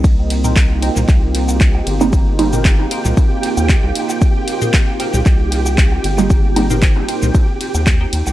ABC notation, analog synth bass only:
X:1
M:4/4
L:1/16
Q:"Swing 16ths" 1/4=115
K:Cm
V:1 name="Analog synth bass" clef=bass
C,,6- C,, C,, C,,6 G,,,2- | G,,,6 z C,, z3 E,, z C,, z2 | z6 z C,, C,,6 G,,,2- | G,,,6 z C,, z3 E,, E,, z E,, C,, |]